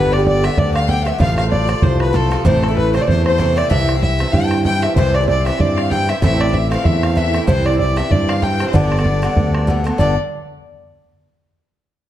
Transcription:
Already playing: G1 G2 D3 B3 G4 B4
0.12 D5, bodhran
0.19 D3 B3 G4
0.26 D5, bodhran
0.44 G2 D3 B3 G4 E5, bodhran
0.57 D2 D5, bodhran
0.74 F5, bodhran
0.87 G2 D3 B3 G4 G5, bodhran
1.03 G2 D3 B3 E5 F5, bodhran
1.07 G4 E5
1.18 A1 C3 F3 A3 F4 F5, bodhran
1.38 F5, bodhran
1.44 F3 A3 F4
1.51 D5, bodhran
1.68 C3 F3 A3 F4 D5, bodhran
1.82 C2 C5, bodhran
1.99 B4, bodhran
2.13 C3 F3 A3 F4 A4, bodhran
2.31 C3 F3 A3 F4, bodhran
2.45 A1 C3 E3 A3 E4 C5, bodhran
2.62 A4, bodhran
2.68 E3 A3 E4
2.76 B4, bodhran
2.94 C3 E3 A3 E4 C5, bodhran
3.01 D5
3.07 E2 C5, bodhran
3.25 C5, bodhran
3.38 C3 E3 A3 E4, bodhran
3.56 C3 E3 A3 E4 D5, bodhran
3.70 C2 G2 E3 C4 E4 E5, bodhran
3.89 bodhran
3.95 E3 C4 E4 F5
4.02 E5, bodhran
4.19 G2 E3 C4 E4, bodhran
4.33 G2 G5, bodhran
4.45 A5
4.51 G5, bodhran
4.64 G2 E3 C4 E4 G5, bodhran
4.82 G2 E3 C4 E4 E5, bodhran
4.95 C2 G2 E3 C4 E4 C5, bodhran
5.14 D5, bodhran
5.21 E3 C4 E4
5.28 D5, bodhran
5.41 G2 F5
5.45 E3 C4 E4 E5, bodhran
5.58 G2 D5, bodhran
5.77 F5, bodhran
5.90 G2 E3 C4 E4 G5, bodhran
6.08 G2 E3 C4 E4 E5, bodhran
6.22 A1 A2 E3 C4 E4 E5, bodhran
6.35 C5
6.40 D5, bodhran
6.47 E3 C4 E4
6.53 E5, bodhran
6.71 A2 E3 C4 E4 F5, bodhran
6.84 E2 E5, bodhran
7.02 F5, bodhran
7.15 A2 E3 C4 E4 E5, bodhran
7.33 A2 E3 C4 E4, bodhran
7.47 C2 G2 E3 C4 E4 C5, bodhran
7.65 D5, bodhran
7.72 E3 C4 E4
7.79 D5, bodhran
7.96 G2 E3 C4 E4 E5, bodhran
8.11 G2 D5, bodhran
8.28 F5, bodhran
8.42 G2 E3 C4 E4 G5, bodhran
8.60 G2 E3 C4 E4, bodhran
8.66 C5
8.73 G1 G2 D3 B3 D4 D5, bodhran
8.92 bodhran
8.97 D3 B3 D4, bodhran
9.05 bodhran
9.22 G2 D3 B3 D4, bodhran
9.36 D2, bodhran
9.55 bodhran
9.67 G2 D3 B3 D4, bodhran
9.84 G2 D3 B3 D4, bodhran
9.98 G1 G2 D3 B3 D4 D5, bodhran

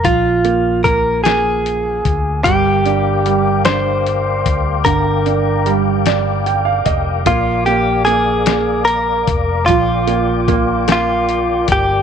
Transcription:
Already playing: A#3
0.04 A#1 F3 F4, kick, closed hi-hat
0.45 A#3, closed hi-hat
0.84 A#3 A#4, kick, closed hi-hat
1.24 A#3 G#4, snare, closed hi-hat
1.66 closed hi-hat
2.05 D2, kick, closed hi-hat
2.43 G1 G3 G4 A#4 F5 G5 D6, kick, closed hi-hat
2.85 D4, closed hi-hat
3.26 G3, closed hi-hat
3.65 D4 C5, snare, closed hi-hat
4.07 closed hi-hat
4.45 D2, kick, closed hi-hat
4.85 G1 D3 A#4, kick, closed hi-hat
5.26 D4, closed hi-hat
5.66 G3, closed hi-hat
6.06 D5, snare, closed hi-hat
6.46 G5, closed hi-hat
6.65 F5
6.86 F1 D#5, kick, closed hi-hat
7.25 A#1 A#3 F4 A#4 D5, kick, closed hi-hat
7.66 A#3 G4, closed hi-hat
8.05 A#3 G#4, closed hi-hat
8.46 A#3, snare, closed hi-hat
8.85 A#4, closed hi-hat
9.27 F1, kick, closed hi-hat
9.66 A#1 F3 F4 G5, kick, closed hi-hat
10.07 A#3, closed hi-hat
10.48 A#3, kick, closed hi-hat
10.88 A#3, snare, closed hi-hat
10.92 F4
11.29 closed hi-hat
11.68 G1, kick, closed hi-hat
11.72 G4

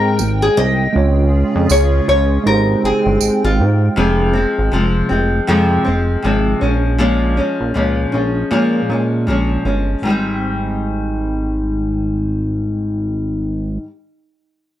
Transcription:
Already playing: G#2 G#3 C4 D#4 G4 A#4 C5 G5
0.19 G#1, tambourine
0.42 G#4
0.57 C2 D#5
0.93 C#2 C#3 G#3 C#4 F4 G#4
0.97 C#5
1.55 F2
1.70 C#2 C#5, tambourine
2.08 C#2 C#5
2.44 G#1 G#3 C4 D#4 G4 A#4 G5
2.49 C5
2.83 G1 G#4
3.06 G1
3.21 G#1, tambourine
3.44 G#1 F4
3.59 G#2
3.96 F1 F2 C3 F3 G#3 C4
4.33 F3 G#3 C4
4.58 G#1
4.72 F1 C3 F3 G#3 C4
5.09 F1 F3 G#3 C4
5.47 F2 C3 F3 G#3 C4
5.84 F1 F3 G#3 C4
6.22 G#1 C3 F3 G#3 C4
6.61 A#1 F3 G#3 C#4
6.99 A#2 F3 G#3 C#4
7.37 F3 G#3 C#4
7.61 A#1
7.74 C#2 A#2 F3 G#3 C#4
8.12 A#1 F3 G#3 C#4
8.51 A#2 F3 G#3 C#4
8.89 A#2 G#3 C#4
8.93 F3
9.27 A#1 A#2 F3 G#3 C#4
9.65 G1 F3 G#3 C#4
10.02 G#1 G#2 D#3
10.07 G3 C4 D#4

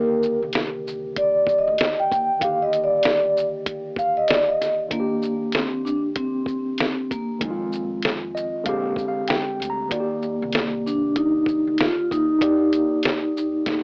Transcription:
Already playing: D#2 D3 D#3 A#3 G4 A#4
0.23 shaker
0.42 C2
0.53 snare, closed hi-hat
0.87 shaker
1.16 D5, kick, closed hi-hat
1.47 kick, shaker
1.58 D#5
1.67 D2
1.78 snare, closed hi-hat
2.00 G5
2.11 D#2, kick, closed hi-hat, shaker
2.39 D3 D#3 A#3 F5, kick, closed hi-hat
2.44 G4
2.62 D#5
2.73 closed hi-hat, shaker
2.84 D5
3.03 snare, closed hi-hat
3.37 shaker
3.66 kick, closed hi-hat
3.96 F5, kick, shaker
4.17 D#5
4.28 D5, snare, closed hi-hat
4.48 D#5
4.62 snare, closed hi-hat, shaker
4.89 D#3 A#3 D4, kick, closed hi-hat
4.94 F4
5.00 G4
5.22 shaker
5.52 C4, snare, closed hi-hat
5.85 D4, shaker
6.16 C4, kick, closed hi-hat
6.46 kick, shaker
6.78 snare, closed hi-hat
7.11 A#3, kick, closed hi-hat, shaker
7.39 F2 D#3 G#3 C4, kick, closed hi-hat
7.44 D#4
7.50 F4
7.72 shaker
8.02 snare, closed hi-hat
8.35 D#5, shaker
8.64 A#1 D3 G#3 C4 F5, kick, closed hi-hat
8.69 G4
8.96 kick, shaker
9.08 F5
9.28 G5, snare, closed hi-hat
9.60 D2, closed hi-hat, shaker
9.70 A#5
9.89 D#2 D#3 A#3 D5, kick, closed hi-hat
9.93 F#4
10.00 G4
10.22 shaker
10.42 C2
10.53 snare, closed hi-hat
10.86 D4, shaker
11.16 D#4, kick, closed hi-hat
11.46 kick, shaker
11.67 D2
11.78 F4, snare, closed hi-hat
12.11 D#2 D#4, kick, closed hi-hat, shaker
12.39 D#2 A#3 D#4 D5, kick, closed hi-hat
12.44 G4
12.73 closed hi-hat, shaker
13.03 snare, closed hi-hat
13.37 shaker
13.66 A#1, kick, snare, closed hi-hat

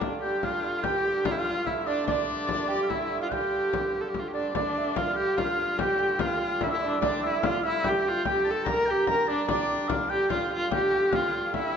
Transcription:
Already playing: G2 D3 D4 D5 G5 A#5
0.01 F5, frame drum
0.22 G4 G5
0.43 F4 F5, frame drum
0.64 F5
0.83 G4 G5, frame drum
1.05 G5
1.25 F4 F5, frame drum
1.31 E4
1.37 F4 F5
1.45 F5
1.52 F5
1.66 E4 E5, frame drum
1.87 D4 D5
2.07 D4 D5, frame drum
2.49 frame drum
2.68 G4 G5
2.83 F5
2.88 E4 E5, frame drum
3.21 F4 F5
3.31 G4 G5, frame drum
3.73 frame drum
3.94 frame drum
4.01 A4
4.09 G4
4.14 frame drum
4.19 F4
4.28 G4
4.34 D4 D5
4.54 G2 D3 D4 D5, frame drum
4.78 E5
4.96 F4 F5, frame drum
5.16 G4 G5
5.37 F4 F5, frame drum
5.79 G4 G5, frame drum
5.98 G5
6.19 F4 F5, frame drum
6.40 F5
6.61 E4 E5, frame drum
6.67 D4
6.71 E4 E5
6.81 D4 D5
7.01 D4 D5, frame drum
7.23 E4 E5
7.43 F4 F5, frame drum
7.63 E4 E5
7.84 G5, frame drum
7.89 G4
8.08 F4
8.25 G5, frame drum
8.30 G4
8.44 A5
8.50 A4
8.65 A#5, frame drum
8.70 A#4
8.86 G5
8.90 G4
9.07 A#4 A#5, frame drum
9.27 D4 D5
9.47 G2 D3 D4 D5, frame drum
9.89 F5, frame drum
10.09 G4 G5
10.30 F4 F5, frame drum
10.51 F4 F5
10.70 G4 G5, frame drum
10.91 G5
11.12 F4 F5, frame drum
11.53 E4 E5, frame drum

